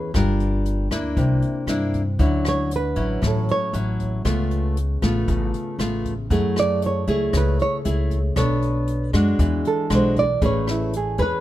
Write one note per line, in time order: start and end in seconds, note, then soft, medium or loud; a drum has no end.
0.00 0.10 E2 medium
0.00 0.12 E3 medium
0.00 0.10 C#4 soft
0.00 0.10 G#4 medium
0.00 0.10 B4 medium
0.14 0.87 G1 loud
0.14 0.91 G3 medium
0.14 0.87 D4 medium
0.14 0.88 F4 soft
0.14 0.88 A#4 medium
0.14 kick medium
0.14 cross-stick medium
0.14 closed hi-hat soft
0.40 closed hi-hat soft
0.65 closed hi-hat soft
0.91 1.15 D2 medium
0.91 1.64 A#3 medium
0.91 1.65 D4 medium
0.91 1.65 E4 medium
0.91 kick soft
0.91 cross-stick medium
0.91 closed hi-hat soft
1.17 1.41 C2 medium
1.17 2.17 C3 medium
1.17 kick medium
1.17 closed hi-hat soft
1.42 closed hi-hat soft
1.67 2.15 G2 medium
1.67 2.01 A#3 soft
1.67 2.01 D4 medium
1.67 2.02 E4 medium
1.67 cross-stick medium
1.67 closed hi-hat soft
1.94 kick soft
1.94 closed hi-hat soft
2.19 2.92 D2 loud
2.19 3.20 D3 medium
2.19 2.71 F#3 medium
2.19 2.71 C#4 medium
2.19 2.71 E4 medium
2.19 kick medium
2.19 closed hi-hat soft
2.45 2.72 C#5 medium
2.45 cross-stick medium
2.45 closed hi-hat soft
2.71 closed hi-hat soft
2.76 3.21 B4 medium
2.96 3.21 A1 medium
2.96 3.69 F#3 medium
2.96 3.70 C#4 medium
2.96 3.70 E4 medium
2.96 kick soft
2.96 closed hi-hat soft
3.22 3.46 A1 medium
3.22 4.22 A2 medium
3.22 kick medium
3.22 cross-stick medium
3.22 closed hi-hat soft
3.27 3.50 A4 medium
3.48 3.75 C#5 medium
3.48 closed hi-hat soft
3.73 4.21 A1 medium
3.73 4.21 F#3 medium
3.73 4.21 C#4 soft
3.73 4.21 E4 medium
3.73 closed hi-hat soft
4.00 kick soft
4.00 closed hi-hat soft
4.25 4.98 C#2 loud
4.25 5.25 C#3 medium
4.25 4.76 A3 medium
4.25 4.76 B3 soft
4.25 4.76 F4 medium
4.25 kick medium
4.25 cross-stick medium
4.25 closed hi-hat soft
4.51 closed hi-hat soft
4.77 closed hi-hat soft
5.02 5.26 A1 medium
5.02 5.75 A3 medium
5.02 5.75 B3 medium
5.02 5.76 F4 medium
5.02 kick soft
5.02 cross-stick medium
5.02 closed hi-hat soft
5.28 5.52 A1 loud
5.28 6.28 C#3 medium
5.28 kick medium
5.28 closed hi-hat soft
5.54 closed hi-hat soft
5.79 6.27 A1 medium
5.79 6.12 A3 medium
5.79 6.13 B3 soft
5.79 6.13 F4 medium
5.79 cross-stick medium
5.79 closed hi-hat soft
6.05 kick soft
6.05 closed hi-hat soft
6.30 7.04 F#2 medium
6.30 7.31 F#3 medium
6.30 7.04 A3 soft
6.30 7.04 E4 medium
6.30 7.04 G#4 medium
6.30 kick medium
6.30 closed hi-hat soft
6.56 6.83 D5 medium
6.56 cross-stick medium
6.56 closed hi-hat soft
6.82 closed hi-hat soft
6.86 7.32 C#5 medium
7.08 7.32 C#2 medium
7.08 7.81 A3 medium
7.08 7.81 E4 medium
7.08 7.81 G#4 medium
7.08 kick soft
7.08 closed hi-hat soft
7.33 7.57 C#2 medium
7.33 8.33 C#3 medium
7.33 kick medium
7.33 cross-stick medium
7.33 closed hi-hat soft
7.37 7.60 B4 medium
7.59 7.77 C#5 medium
7.59 closed hi-hat soft
7.85 8.33 C#2 medium
7.85 8.18 A3 soft
7.85 8.18 E4 medium
7.85 8.18 G#4 medium
7.85 closed hi-hat soft
8.11 kick soft
8.11 closed hi-hat soft
8.36 9.09 B1 loud
8.36 9.13 B3 medium
8.36 9.09 D4 medium
8.36 9.09 A4 soft
8.36 9.09 C#5 medium
8.36 kick medium
8.36 cross-stick medium
8.36 closed hi-hat soft
8.62 closed hi-hat soft
8.87 closed hi-hat soft
9.13 9.37 F#2 medium
9.13 9.86 G#3 medium
9.13 9.87 D4 medium
9.13 9.87 F#4 medium
9.13 kick soft
9.13 cross-stick medium
9.13 closed hi-hat soft
9.39 9.63 E2 loud
9.39 10.39 E3 medium
9.39 kick medium
9.39 closed hi-hat soft
9.65 9.91 A4 medium
9.65 closed hi-hat soft
9.90 10.38 B1 medium
9.90 10.23 G#3 medium
9.90 10.23 D4 medium
9.90 10.24 F#4 medium
9.90 cross-stick medium
9.90 closed hi-hat soft
9.95 10.18 C5 medium
10.16 10.42 D5 medium
10.16 kick soft
10.16 closed hi-hat soft
10.42 11.15 A1 loud
10.42 11.40 A3 medium
10.42 10.93 C#4 medium
10.42 10.93 G#4 medium
10.42 10.93 B4 medium
10.42 kick medium
10.42 closed hi-hat soft
10.46 10.69 C#5 medium
10.67 10.94 E4 soft
10.67 cross-stick medium
10.67 closed hi-hat soft
10.93 11.20 G#4 medium
10.93 closed hi-hat soft
11.18 11.40 E2 medium
11.18 11.40 C#4 medium
11.18 11.40 G#4 medium
11.18 11.40 B4 medium
11.18 kick soft
11.18 closed hi-hat soft